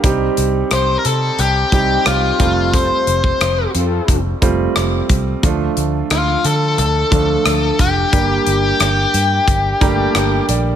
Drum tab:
HH |x-x-x-x-x-x-x-x-|x-x-x-x-x-x-x-x-|x-x-x-x-x-x-x-x-|x-x-x-x-x-x-x-x-|
SD |----r-------r---|----r-------r---|----r-------r---|----r-------r---|
BD |o---------o---o-|o--o----o-o---o-|o---------o---o-|o-------o-o-----|